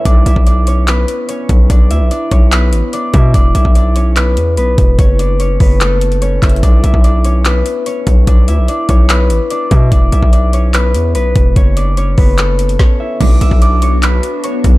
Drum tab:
CC |------------------------------------------------|------------------------------------------------|------------------------------------------------|------------------------------------------------|
HH |x-----x-----x-----x-----x-----x-----x-----x-----|x-----x-----x-----x-----x-----x-----x-----x-----|x-----x-----x-----x-----x-----x-----x-----x-----|x-----x-----x-----o-----x-----x--x--x-----x-x-x-|
CP |------------------------x-----------------------|------------------------x-----------------------|------------------------x-----------------------|------------------------x-----------------x-----|
SD |------------------------------------------------|------------------------------------------------|------------------------------------------------|------------------------------------------------|
BD |o--------o--------------------------------o-----|o-----------------o-----------------------o-----|o--------o--------------------------------o-----|o-----------------o-----------------------o-----|

CC |------------------------------------------------|------------------------------------------------|------------------------------------------------|------------------------------------------------|
HH |x-----x-----x-----x-----x-----x-----x-----x-----|x-----x-----x-----x-----x-----x-----x-----x-----|x-----x-----x-----x-----x-----x-----x-----x-----|x-----x-----x-----o-----x-----x--x--------------|
CP |------------------------x-----------------------|------------------------x-----------------------|------------------------x-----------------------|------------------------x-----------------------|
SD |------------------------------------------------|------------------------------------------------|------------------------------------------------|------------------------------------o-----------|
BD |o--------o--------------------------------o-----|o-----------------o-----------------------o-----|o--------o--------------------------------o-----|o-----------------o-----------------o-----------|

CC |x-----------------------------------------------|
HH |x-----x-----x-----x-----x-----x-----x-----x-----|
CP |------------------------x-----------------------|
SD |------------------------------------------------|
BD |o--------o--------------------------------o-----|